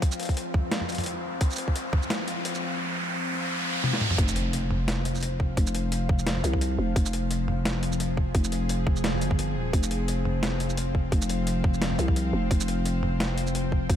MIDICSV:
0, 0, Header, 1, 6, 480
1, 0, Start_track
1, 0, Key_signature, -4, "minor"
1, 0, Tempo, 346821
1, 32, Time_signature, 4, 2, 24, 8
1, 19322, End_track
2, 0, Start_track
2, 0, Title_t, "Synth drone"
2, 0, Program_c, 0, 95
2, 0, Note_on_c, 0, 53, 71
2, 0, Note_on_c, 0, 60, 65
2, 0, Note_on_c, 0, 72, 74
2, 0, Note_on_c, 0, 77, 83
2, 5775, Note_off_c, 0, 53, 0
2, 5792, Note_off_c, 0, 60, 0
2, 5792, Note_on_c, 0, 53, 79
2, 5793, Note_off_c, 0, 72, 0
2, 5793, Note_off_c, 0, 77, 0
2, 6019, Note_on_c, 0, 72, 91
2, 6053, Note_on_c, 0, 60, 85
2, 6430, Note_on_c, 0, 77, 82
2, 10269, Note_on_c, 0, 68, 82
2, 10290, Note_off_c, 0, 77, 0
2, 14107, Note_on_c, 0, 77, 84
2, 14130, Note_off_c, 0, 68, 0
2, 17948, Note_on_c, 0, 79, 83
2, 17968, Note_off_c, 0, 77, 0
2, 19322, Note_off_c, 0, 53, 0
2, 19322, Note_off_c, 0, 60, 0
2, 19322, Note_off_c, 0, 72, 0
2, 19322, Note_off_c, 0, 79, 0
2, 19322, End_track
3, 0, Start_track
3, 0, Title_t, "808-style bass"
3, 0, Program_c, 1, 38
3, 5791, Note_on_c, 1, 29, 96
3, 7698, Note_off_c, 1, 29, 0
3, 7713, Note_on_c, 1, 29, 99
3, 8899, Note_off_c, 1, 29, 0
3, 8911, Note_on_c, 1, 36, 81
3, 9378, Note_off_c, 1, 36, 0
3, 9392, Note_on_c, 1, 29, 96
3, 9614, Note_off_c, 1, 29, 0
3, 9632, Note_on_c, 1, 29, 98
3, 11538, Note_off_c, 1, 29, 0
3, 11552, Note_on_c, 1, 29, 98
3, 12751, Note_on_c, 1, 31, 103
3, 12772, Note_off_c, 1, 29, 0
3, 13229, Note_on_c, 1, 27, 95
3, 13250, Note_off_c, 1, 31, 0
3, 13453, Note_off_c, 1, 27, 0
3, 13471, Note_on_c, 1, 29, 98
3, 15377, Note_off_c, 1, 29, 0
3, 15391, Note_on_c, 1, 29, 99
3, 16578, Note_off_c, 1, 29, 0
3, 16590, Note_on_c, 1, 36, 82
3, 17057, Note_off_c, 1, 36, 0
3, 17069, Note_on_c, 1, 29, 96
3, 17293, Note_off_c, 1, 29, 0
3, 17311, Note_on_c, 1, 29, 100
3, 19218, Note_off_c, 1, 29, 0
3, 19232, Note_on_c, 1, 29, 99
3, 19322, Note_off_c, 1, 29, 0
3, 19322, End_track
4, 0, Start_track
4, 0, Title_t, "Impact"
4, 0, Program_c, 2, 103
4, 5791, Note_on_c, 2, 60, 77
4, 7711, Note_off_c, 2, 60, 0
4, 19322, End_track
5, 0, Start_track
5, 0, Title_t, "Riser"
5, 0, Program_c, 3, 103
5, 0, Note_on_c, 3, 60, 79
5, 5791, Note_off_c, 3, 60, 0
5, 19322, End_track
6, 0, Start_track
6, 0, Title_t, "Drums"
6, 30, Note_on_c, 9, 36, 115
6, 31, Note_on_c, 9, 42, 75
6, 161, Note_on_c, 9, 82, 67
6, 169, Note_off_c, 9, 36, 0
6, 170, Note_off_c, 9, 42, 0
6, 271, Note_on_c, 9, 42, 60
6, 300, Note_off_c, 9, 82, 0
6, 314, Note_off_c, 9, 42, 0
6, 314, Note_on_c, 9, 42, 49
6, 350, Note_off_c, 9, 42, 0
6, 350, Note_on_c, 9, 42, 40
6, 401, Note_on_c, 9, 36, 59
6, 403, Note_off_c, 9, 42, 0
6, 403, Note_on_c, 9, 42, 33
6, 432, Note_off_c, 9, 42, 0
6, 432, Note_on_c, 9, 42, 27
6, 474, Note_off_c, 9, 42, 0
6, 474, Note_on_c, 9, 42, 22
6, 510, Note_off_c, 9, 42, 0
6, 510, Note_on_c, 9, 42, 78
6, 540, Note_off_c, 9, 36, 0
6, 649, Note_off_c, 9, 42, 0
6, 750, Note_on_c, 9, 36, 101
6, 751, Note_on_c, 9, 45, 52
6, 888, Note_off_c, 9, 36, 0
6, 890, Note_off_c, 9, 45, 0
6, 990, Note_on_c, 9, 38, 120
6, 990, Note_on_c, 9, 42, 78
6, 1123, Note_on_c, 9, 45, 36
6, 1128, Note_off_c, 9, 38, 0
6, 1128, Note_off_c, 9, 42, 0
6, 1231, Note_on_c, 9, 42, 28
6, 1231, Note_on_c, 9, 82, 39
6, 1261, Note_off_c, 9, 45, 0
6, 1274, Note_off_c, 9, 42, 0
6, 1274, Note_on_c, 9, 42, 33
6, 1311, Note_off_c, 9, 42, 0
6, 1311, Note_on_c, 9, 42, 37
6, 1362, Note_off_c, 9, 42, 0
6, 1362, Note_on_c, 9, 42, 45
6, 1362, Note_on_c, 9, 45, 52
6, 1369, Note_off_c, 9, 82, 0
6, 1390, Note_off_c, 9, 42, 0
6, 1390, Note_on_c, 9, 42, 49
6, 1434, Note_off_c, 9, 42, 0
6, 1434, Note_on_c, 9, 42, 54
6, 1469, Note_off_c, 9, 42, 0
6, 1469, Note_on_c, 9, 42, 78
6, 1500, Note_off_c, 9, 45, 0
6, 1608, Note_off_c, 9, 42, 0
6, 1949, Note_on_c, 9, 42, 80
6, 1951, Note_on_c, 9, 36, 112
6, 2081, Note_on_c, 9, 82, 31
6, 2087, Note_off_c, 9, 42, 0
6, 2089, Note_off_c, 9, 36, 0
6, 2110, Note_off_c, 9, 82, 0
6, 2110, Note_on_c, 9, 82, 42
6, 2155, Note_off_c, 9, 82, 0
6, 2155, Note_on_c, 9, 82, 52
6, 2191, Note_on_c, 9, 42, 65
6, 2294, Note_off_c, 9, 82, 0
6, 2322, Note_on_c, 9, 36, 57
6, 2329, Note_off_c, 9, 42, 0
6, 2429, Note_on_c, 9, 42, 79
6, 2460, Note_off_c, 9, 36, 0
6, 2568, Note_off_c, 9, 42, 0
6, 2669, Note_on_c, 9, 45, 54
6, 2670, Note_on_c, 9, 36, 104
6, 2802, Note_on_c, 9, 82, 39
6, 2807, Note_off_c, 9, 45, 0
6, 2808, Note_off_c, 9, 36, 0
6, 2910, Note_on_c, 9, 38, 117
6, 2910, Note_on_c, 9, 42, 78
6, 2940, Note_off_c, 9, 82, 0
6, 3048, Note_off_c, 9, 38, 0
6, 3048, Note_off_c, 9, 42, 0
6, 3151, Note_on_c, 9, 42, 63
6, 3289, Note_off_c, 9, 42, 0
6, 3391, Note_on_c, 9, 42, 80
6, 3523, Note_on_c, 9, 82, 38
6, 3529, Note_off_c, 9, 42, 0
6, 3662, Note_off_c, 9, 82, 0
6, 5313, Note_on_c, 9, 48, 65
6, 5445, Note_on_c, 9, 38, 63
6, 5451, Note_off_c, 9, 48, 0
6, 5553, Note_on_c, 9, 47, 90
6, 5583, Note_off_c, 9, 38, 0
6, 5684, Note_on_c, 9, 45, 85
6, 5691, Note_off_c, 9, 47, 0
6, 5791, Note_on_c, 9, 36, 116
6, 5793, Note_on_c, 9, 42, 84
6, 5822, Note_off_c, 9, 45, 0
6, 5925, Note_on_c, 9, 82, 64
6, 5929, Note_off_c, 9, 36, 0
6, 5932, Note_off_c, 9, 42, 0
6, 6033, Note_on_c, 9, 42, 74
6, 6063, Note_off_c, 9, 82, 0
6, 6172, Note_off_c, 9, 42, 0
6, 6273, Note_on_c, 9, 42, 83
6, 6411, Note_off_c, 9, 42, 0
6, 6513, Note_on_c, 9, 45, 53
6, 6651, Note_off_c, 9, 45, 0
6, 6753, Note_on_c, 9, 38, 122
6, 6753, Note_on_c, 9, 42, 86
6, 6891, Note_off_c, 9, 38, 0
6, 6891, Note_off_c, 9, 42, 0
6, 6993, Note_on_c, 9, 42, 69
6, 7126, Note_on_c, 9, 82, 34
6, 7131, Note_off_c, 9, 42, 0
6, 7153, Note_off_c, 9, 82, 0
6, 7153, Note_on_c, 9, 82, 30
6, 7197, Note_off_c, 9, 82, 0
6, 7197, Note_on_c, 9, 82, 23
6, 7233, Note_on_c, 9, 42, 85
6, 7336, Note_off_c, 9, 82, 0
6, 7371, Note_off_c, 9, 42, 0
6, 7472, Note_on_c, 9, 36, 64
6, 7610, Note_off_c, 9, 36, 0
6, 7712, Note_on_c, 9, 36, 127
6, 7712, Note_on_c, 9, 42, 84
6, 7844, Note_on_c, 9, 82, 62
6, 7850, Note_off_c, 9, 36, 0
6, 7851, Note_off_c, 9, 42, 0
6, 7952, Note_on_c, 9, 42, 72
6, 7982, Note_off_c, 9, 82, 0
6, 8090, Note_off_c, 9, 42, 0
6, 8192, Note_on_c, 9, 42, 86
6, 8331, Note_off_c, 9, 42, 0
6, 8432, Note_on_c, 9, 36, 113
6, 8432, Note_on_c, 9, 45, 52
6, 8565, Note_on_c, 9, 82, 37
6, 8571, Note_off_c, 9, 36, 0
6, 8571, Note_off_c, 9, 45, 0
6, 8672, Note_on_c, 9, 38, 127
6, 8672, Note_on_c, 9, 42, 86
6, 8703, Note_off_c, 9, 82, 0
6, 8803, Note_on_c, 9, 45, 37
6, 8810, Note_off_c, 9, 38, 0
6, 8810, Note_off_c, 9, 42, 0
6, 8914, Note_on_c, 9, 42, 67
6, 8914, Note_on_c, 9, 82, 35
6, 8941, Note_off_c, 9, 45, 0
6, 9044, Note_on_c, 9, 36, 66
6, 9044, Note_on_c, 9, 45, 54
6, 9052, Note_off_c, 9, 42, 0
6, 9052, Note_off_c, 9, 82, 0
6, 9153, Note_on_c, 9, 42, 85
6, 9183, Note_off_c, 9, 36, 0
6, 9183, Note_off_c, 9, 45, 0
6, 9291, Note_off_c, 9, 42, 0
6, 9632, Note_on_c, 9, 36, 127
6, 9634, Note_on_c, 9, 42, 82
6, 9766, Note_on_c, 9, 82, 61
6, 9771, Note_off_c, 9, 36, 0
6, 9772, Note_off_c, 9, 42, 0
6, 9873, Note_on_c, 9, 42, 70
6, 9904, Note_off_c, 9, 82, 0
6, 10011, Note_off_c, 9, 42, 0
6, 10111, Note_on_c, 9, 42, 81
6, 10250, Note_off_c, 9, 42, 0
6, 10353, Note_on_c, 9, 45, 52
6, 10492, Note_off_c, 9, 45, 0
6, 10593, Note_on_c, 9, 38, 126
6, 10593, Note_on_c, 9, 42, 85
6, 10732, Note_off_c, 9, 38, 0
6, 10732, Note_off_c, 9, 42, 0
6, 10834, Note_on_c, 9, 42, 65
6, 10966, Note_on_c, 9, 82, 36
6, 10972, Note_off_c, 9, 42, 0
6, 11072, Note_on_c, 9, 42, 82
6, 11104, Note_off_c, 9, 82, 0
6, 11211, Note_off_c, 9, 42, 0
6, 11312, Note_on_c, 9, 36, 65
6, 11450, Note_off_c, 9, 36, 0
6, 11551, Note_on_c, 9, 42, 81
6, 11552, Note_on_c, 9, 36, 124
6, 11684, Note_on_c, 9, 82, 63
6, 11689, Note_off_c, 9, 42, 0
6, 11691, Note_off_c, 9, 36, 0
6, 11792, Note_on_c, 9, 42, 67
6, 11822, Note_off_c, 9, 82, 0
6, 11931, Note_off_c, 9, 42, 0
6, 12032, Note_on_c, 9, 42, 77
6, 12170, Note_off_c, 9, 42, 0
6, 12270, Note_on_c, 9, 45, 48
6, 12272, Note_on_c, 9, 36, 110
6, 12403, Note_on_c, 9, 82, 36
6, 12409, Note_off_c, 9, 45, 0
6, 12410, Note_off_c, 9, 36, 0
6, 12511, Note_on_c, 9, 38, 127
6, 12511, Note_on_c, 9, 42, 81
6, 12541, Note_off_c, 9, 82, 0
6, 12646, Note_on_c, 9, 45, 35
6, 12650, Note_off_c, 9, 38, 0
6, 12650, Note_off_c, 9, 42, 0
6, 12753, Note_on_c, 9, 42, 63
6, 12753, Note_on_c, 9, 82, 35
6, 12785, Note_off_c, 9, 45, 0
6, 12883, Note_on_c, 9, 36, 66
6, 12885, Note_on_c, 9, 45, 53
6, 12892, Note_off_c, 9, 42, 0
6, 12892, Note_off_c, 9, 82, 0
6, 12993, Note_on_c, 9, 42, 81
6, 13021, Note_off_c, 9, 36, 0
6, 13023, Note_off_c, 9, 45, 0
6, 13132, Note_off_c, 9, 42, 0
6, 13471, Note_on_c, 9, 36, 122
6, 13473, Note_on_c, 9, 42, 78
6, 13605, Note_on_c, 9, 82, 65
6, 13610, Note_off_c, 9, 36, 0
6, 13612, Note_off_c, 9, 42, 0
6, 13714, Note_on_c, 9, 42, 66
6, 13743, Note_off_c, 9, 82, 0
6, 13852, Note_off_c, 9, 42, 0
6, 13953, Note_on_c, 9, 42, 77
6, 14091, Note_off_c, 9, 42, 0
6, 14192, Note_on_c, 9, 45, 49
6, 14330, Note_off_c, 9, 45, 0
6, 14432, Note_on_c, 9, 38, 125
6, 14432, Note_on_c, 9, 42, 78
6, 14570, Note_off_c, 9, 38, 0
6, 14570, Note_off_c, 9, 42, 0
6, 14672, Note_on_c, 9, 42, 61
6, 14804, Note_on_c, 9, 82, 38
6, 14810, Note_off_c, 9, 42, 0
6, 14912, Note_on_c, 9, 42, 79
6, 14942, Note_off_c, 9, 82, 0
6, 15050, Note_off_c, 9, 42, 0
6, 15151, Note_on_c, 9, 36, 60
6, 15290, Note_off_c, 9, 36, 0
6, 15391, Note_on_c, 9, 36, 120
6, 15392, Note_on_c, 9, 42, 76
6, 15524, Note_on_c, 9, 82, 66
6, 15530, Note_off_c, 9, 36, 0
6, 15530, Note_off_c, 9, 42, 0
6, 15631, Note_on_c, 9, 42, 67
6, 15663, Note_off_c, 9, 82, 0
6, 15770, Note_off_c, 9, 42, 0
6, 15873, Note_on_c, 9, 42, 76
6, 16011, Note_off_c, 9, 42, 0
6, 16111, Note_on_c, 9, 36, 104
6, 16113, Note_on_c, 9, 45, 52
6, 16245, Note_on_c, 9, 82, 38
6, 16250, Note_off_c, 9, 36, 0
6, 16252, Note_off_c, 9, 45, 0
6, 16353, Note_on_c, 9, 38, 118
6, 16353, Note_on_c, 9, 42, 80
6, 16383, Note_off_c, 9, 82, 0
6, 16485, Note_on_c, 9, 45, 37
6, 16491, Note_off_c, 9, 38, 0
6, 16491, Note_off_c, 9, 42, 0
6, 16592, Note_on_c, 9, 42, 64
6, 16592, Note_on_c, 9, 82, 38
6, 16623, Note_off_c, 9, 45, 0
6, 16722, Note_on_c, 9, 36, 63
6, 16724, Note_on_c, 9, 45, 52
6, 16731, Note_off_c, 9, 42, 0
6, 16731, Note_off_c, 9, 82, 0
6, 16833, Note_on_c, 9, 42, 76
6, 16861, Note_off_c, 9, 36, 0
6, 16862, Note_off_c, 9, 45, 0
6, 16971, Note_off_c, 9, 42, 0
6, 17310, Note_on_c, 9, 36, 115
6, 17312, Note_on_c, 9, 42, 78
6, 17443, Note_on_c, 9, 82, 65
6, 17449, Note_off_c, 9, 36, 0
6, 17450, Note_off_c, 9, 42, 0
6, 17552, Note_on_c, 9, 42, 67
6, 17582, Note_off_c, 9, 82, 0
6, 17691, Note_off_c, 9, 42, 0
6, 17792, Note_on_c, 9, 42, 78
6, 17930, Note_off_c, 9, 42, 0
6, 18032, Note_on_c, 9, 45, 54
6, 18171, Note_off_c, 9, 45, 0
6, 18272, Note_on_c, 9, 38, 116
6, 18272, Note_on_c, 9, 42, 79
6, 18410, Note_off_c, 9, 38, 0
6, 18410, Note_off_c, 9, 42, 0
6, 18512, Note_on_c, 9, 42, 66
6, 18643, Note_on_c, 9, 82, 40
6, 18650, Note_off_c, 9, 42, 0
6, 18752, Note_on_c, 9, 42, 79
6, 18781, Note_off_c, 9, 82, 0
6, 18891, Note_off_c, 9, 42, 0
6, 18991, Note_on_c, 9, 36, 60
6, 19129, Note_off_c, 9, 36, 0
6, 19231, Note_on_c, 9, 36, 119
6, 19231, Note_on_c, 9, 42, 80
6, 19322, Note_off_c, 9, 36, 0
6, 19322, Note_off_c, 9, 42, 0
6, 19322, End_track
0, 0, End_of_file